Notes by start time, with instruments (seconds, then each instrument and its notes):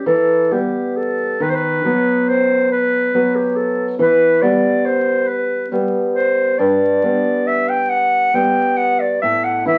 0.06 nylon-string guitar E3, clarinet A4
0.51 nylon-string guitar G3 B3, clarinet G4
0.97 clarinet A4
1.40 nylon-string guitar D#3, clarinet B4
1.50 clarinet C5
1.55 clarinet B4
1.84 nylon-string guitar F#3 B3
2.29 clarinet C5
2.72 clarinet B4
3.14 nylon-string guitar F#3 B3
3.36 clarinet G4
3.56 clarinet A4
3.99 nylon-string guitar E3, clarinet B4
4.42 nylon-string guitar G3 B3, clarinet D5
4.85 clarinet C5
5.28 clarinet B4
5.72 nylon-string guitar G3 B3
6.14 clarinet C5
6.58 nylon-string guitar G2, clarinet D5
7.03 nylon-string guitar G3 B3
7.47 clarinet E5
7.69 clarinet G5
7.90 clarinet F#5
8.34 nylon-string guitar G3 B3, clarinet G5
8.78 clarinet F#5
9.00 clarinet D5
9.22 nylon-string guitar A2, clarinet E5
9.44 clarinet F#5
9.65 nylon-string guitar E3 E4, clarinet E5